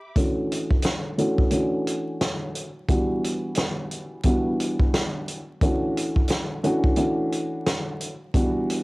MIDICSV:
0, 0, Header, 1, 4, 480
1, 0, Start_track
1, 0, Tempo, 681818
1, 113, Time_signature, 4, 2, 24, 8
1, 6218, End_track
2, 0, Start_track
2, 0, Title_t, "String section"
2, 0, Program_c, 0, 48
2, 0, Note_on_c, 0, 67, 76
2, 0, Note_on_c, 0, 76, 73
2, 0, Note_on_c, 0, 83, 72
2, 0, Note_on_c, 0, 86, 92
2, 92, Note_off_c, 0, 67, 0
2, 92, Note_off_c, 0, 76, 0
2, 92, Note_off_c, 0, 83, 0
2, 92, Note_off_c, 0, 86, 0
2, 6218, End_track
3, 0, Start_track
3, 0, Title_t, "Upright piano"
3, 0, Program_c, 1, 0
3, 116, Note_on_c, 1, 52, 85
3, 117, Note_on_c, 1, 57, 76
3, 118, Note_on_c, 1, 61, 81
3, 120, Note_on_c, 1, 62, 81
3, 121, Note_on_c, 1, 66, 90
3, 788, Note_off_c, 1, 52, 0
3, 789, Note_off_c, 1, 57, 0
3, 789, Note_off_c, 1, 61, 0
3, 790, Note_off_c, 1, 62, 0
3, 791, Note_off_c, 1, 66, 0
3, 828, Note_on_c, 1, 52, 85
3, 829, Note_on_c, 1, 57, 83
3, 831, Note_on_c, 1, 61, 83
3, 832, Note_on_c, 1, 62, 75
3, 833, Note_on_c, 1, 66, 99
3, 1054, Note_off_c, 1, 52, 0
3, 1055, Note_off_c, 1, 57, 0
3, 1056, Note_off_c, 1, 61, 0
3, 1057, Note_off_c, 1, 62, 0
3, 1058, Note_off_c, 1, 66, 0
3, 1064, Note_on_c, 1, 52, 95
3, 1065, Note_on_c, 1, 57, 77
3, 1066, Note_on_c, 1, 61, 77
3, 1068, Note_on_c, 1, 62, 85
3, 1069, Note_on_c, 1, 66, 88
3, 1852, Note_off_c, 1, 52, 0
3, 1852, Note_off_c, 1, 57, 0
3, 1853, Note_off_c, 1, 61, 0
3, 1853, Note_off_c, 1, 62, 0
3, 1854, Note_off_c, 1, 66, 0
3, 2031, Note_on_c, 1, 52, 89
3, 2032, Note_on_c, 1, 55, 78
3, 2033, Note_on_c, 1, 59, 74
3, 2035, Note_on_c, 1, 62, 79
3, 2036, Note_on_c, 1, 66, 99
3, 2930, Note_off_c, 1, 52, 0
3, 2931, Note_off_c, 1, 55, 0
3, 2931, Note_off_c, 1, 59, 0
3, 2932, Note_off_c, 1, 62, 0
3, 2933, Note_off_c, 1, 66, 0
3, 2992, Note_on_c, 1, 52, 88
3, 2994, Note_on_c, 1, 55, 80
3, 2995, Note_on_c, 1, 59, 77
3, 2996, Note_on_c, 1, 62, 81
3, 2997, Note_on_c, 1, 66, 89
3, 3775, Note_off_c, 1, 52, 0
3, 3776, Note_off_c, 1, 55, 0
3, 3777, Note_off_c, 1, 59, 0
3, 3778, Note_off_c, 1, 62, 0
3, 3778, Note_off_c, 1, 66, 0
3, 3957, Note_on_c, 1, 52, 84
3, 3958, Note_on_c, 1, 57, 77
3, 3960, Note_on_c, 1, 61, 83
3, 3961, Note_on_c, 1, 62, 80
3, 3962, Note_on_c, 1, 66, 92
3, 4629, Note_off_c, 1, 52, 0
3, 4629, Note_off_c, 1, 57, 0
3, 4630, Note_off_c, 1, 61, 0
3, 4631, Note_off_c, 1, 62, 0
3, 4631, Note_off_c, 1, 66, 0
3, 4669, Note_on_c, 1, 52, 89
3, 4670, Note_on_c, 1, 57, 84
3, 4671, Note_on_c, 1, 61, 83
3, 4673, Note_on_c, 1, 62, 79
3, 4674, Note_on_c, 1, 66, 104
3, 4894, Note_off_c, 1, 52, 0
3, 4895, Note_off_c, 1, 57, 0
3, 4896, Note_off_c, 1, 61, 0
3, 4897, Note_off_c, 1, 62, 0
3, 4898, Note_off_c, 1, 66, 0
3, 4904, Note_on_c, 1, 52, 94
3, 4906, Note_on_c, 1, 57, 78
3, 4907, Note_on_c, 1, 61, 76
3, 4909, Note_on_c, 1, 62, 85
3, 4910, Note_on_c, 1, 66, 86
3, 5692, Note_off_c, 1, 52, 0
3, 5692, Note_off_c, 1, 57, 0
3, 5693, Note_off_c, 1, 61, 0
3, 5694, Note_off_c, 1, 62, 0
3, 5695, Note_off_c, 1, 66, 0
3, 5871, Note_on_c, 1, 52, 90
3, 5872, Note_on_c, 1, 55, 77
3, 5873, Note_on_c, 1, 59, 75
3, 5875, Note_on_c, 1, 62, 83
3, 5876, Note_on_c, 1, 66, 95
3, 6218, Note_off_c, 1, 52, 0
3, 6218, Note_off_c, 1, 55, 0
3, 6218, Note_off_c, 1, 59, 0
3, 6218, Note_off_c, 1, 62, 0
3, 6218, Note_off_c, 1, 66, 0
3, 6218, End_track
4, 0, Start_track
4, 0, Title_t, "Drums"
4, 111, Note_on_c, 9, 36, 104
4, 111, Note_on_c, 9, 42, 91
4, 181, Note_off_c, 9, 42, 0
4, 182, Note_off_c, 9, 36, 0
4, 363, Note_on_c, 9, 42, 80
4, 434, Note_off_c, 9, 42, 0
4, 496, Note_on_c, 9, 36, 90
4, 566, Note_off_c, 9, 36, 0
4, 578, Note_on_c, 9, 42, 95
4, 597, Note_on_c, 9, 38, 103
4, 648, Note_off_c, 9, 42, 0
4, 667, Note_off_c, 9, 38, 0
4, 833, Note_on_c, 9, 42, 56
4, 903, Note_off_c, 9, 42, 0
4, 973, Note_on_c, 9, 36, 96
4, 1044, Note_off_c, 9, 36, 0
4, 1060, Note_on_c, 9, 42, 76
4, 1131, Note_off_c, 9, 42, 0
4, 1317, Note_on_c, 9, 42, 70
4, 1387, Note_off_c, 9, 42, 0
4, 1556, Note_on_c, 9, 42, 86
4, 1557, Note_on_c, 9, 38, 114
4, 1627, Note_off_c, 9, 38, 0
4, 1627, Note_off_c, 9, 42, 0
4, 1797, Note_on_c, 9, 42, 69
4, 1867, Note_off_c, 9, 42, 0
4, 2031, Note_on_c, 9, 42, 88
4, 2032, Note_on_c, 9, 36, 105
4, 2102, Note_off_c, 9, 36, 0
4, 2102, Note_off_c, 9, 42, 0
4, 2283, Note_on_c, 9, 42, 78
4, 2354, Note_off_c, 9, 42, 0
4, 2498, Note_on_c, 9, 42, 89
4, 2517, Note_on_c, 9, 38, 108
4, 2569, Note_off_c, 9, 42, 0
4, 2588, Note_off_c, 9, 38, 0
4, 2753, Note_on_c, 9, 42, 57
4, 2824, Note_off_c, 9, 42, 0
4, 2980, Note_on_c, 9, 42, 78
4, 2986, Note_on_c, 9, 36, 88
4, 3051, Note_off_c, 9, 42, 0
4, 3056, Note_off_c, 9, 36, 0
4, 3237, Note_on_c, 9, 42, 72
4, 3308, Note_off_c, 9, 42, 0
4, 3375, Note_on_c, 9, 36, 100
4, 3446, Note_off_c, 9, 36, 0
4, 3476, Note_on_c, 9, 42, 84
4, 3477, Note_on_c, 9, 38, 111
4, 3547, Note_off_c, 9, 42, 0
4, 3548, Note_off_c, 9, 38, 0
4, 3717, Note_on_c, 9, 42, 68
4, 3787, Note_off_c, 9, 42, 0
4, 3952, Note_on_c, 9, 36, 112
4, 3952, Note_on_c, 9, 42, 90
4, 4022, Note_off_c, 9, 36, 0
4, 4022, Note_off_c, 9, 42, 0
4, 4204, Note_on_c, 9, 42, 79
4, 4274, Note_off_c, 9, 42, 0
4, 4336, Note_on_c, 9, 36, 97
4, 4407, Note_off_c, 9, 36, 0
4, 4419, Note_on_c, 9, 42, 92
4, 4437, Note_on_c, 9, 38, 106
4, 4489, Note_off_c, 9, 42, 0
4, 4508, Note_off_c, 9, 38, 0
4, 4673, Note_on_c, 9, 42, 59
4, 4744, Note_off_c, 9, 42, 0
4, 4813, Note_on_c, 9, 36, 95
4, 4884, Note_off_c, 9, 36, 0
4, 4900, Note_on_c, 9, 42, 76
4, 4970, Note_off_c, 9, 42, 0
4, 5156, Note_on_c, 9, 42, 73
4, 5227, Note_off_c, 9, 42, 0
4, 5396, Note_on_c, 9, 42, 89
4, 5397, Note_on_c, 9, 38, 112
4, 5466, Note_off_c, 9, 42, 0
4, 5467, Note_off_c, 9, 38, 0
4, 5636, Note_on_c, 9, 42, 70
4, 5706, Note_off_c, 9, 42, 0
4, 5871, Note_on_c, 9, 36, 110
4, 5871, Note_on_c, 9, 42, 89
4, 5941, Note_off_c, 9, 42, 0
4, 5942, Note_off_c, 9, 36, 0
4, 6123, Note_on_c, 9, 42, 84
4, 6193, Note_off_c, 9, 42, 0
4, 6218, End_track
0, 0, End_of_file